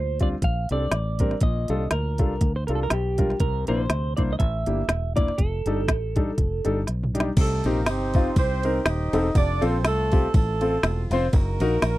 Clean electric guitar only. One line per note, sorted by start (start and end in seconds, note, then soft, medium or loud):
0.00 0.18 C5 medium
0.23 0.28 D5 medium
0.44 0.72 F5 medium
0.72 1.43 D5 medium
1.43 1.92 D#5 medium
1.92 2.56 A#4 medium
2.56 2.66 C5 medium
2.67 2.75 A#4 medium
2.75 2.83 A4 medium
2.83 2.91 A#4 medium
2.92 3.38 G4 medium
3.40 3.68 A#4 medium
3.68 4.16 C5 medium
4.17 4.22 D5 medium
4.33 4.38 D#5 medium
4.39 5.16 E5 medium
5.17 5.39 D5 medium
5.38 6.83 A4 medium